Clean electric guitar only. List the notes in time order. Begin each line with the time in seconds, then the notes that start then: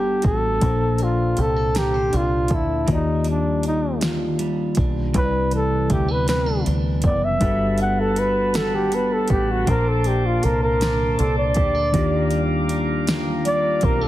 Already playing: G3 B3 F#4 A4
0.23 F#4
0.62 A#3
0.99 D4
1.37 G4
1.56 A4
1.74 A#4
1.94 C5
2.12 D4
2.50 A4
2.87 D#3
3.25 G3
3.63 D4
4.01 F4
4.39 G3
4.77 D4
5.13 C3
5.52 E3
5.90 A3
6.08 B3
6.28 C4
6.46 D4
6.66 E3
7.03 B3
7.41 G3
7.79 B3
8.17 F#4
8.55 A4
8.92 B3
9.29 F#4
9.67 A#3
10.05 D4
10.42 A4
10.81 C5
11.18 D4
11.55 G4
11.75 A4
11.93 D#3
12.32 G3
12.69 D4
13.07 F4
13.45 G3
13.83 C4
14.01 D4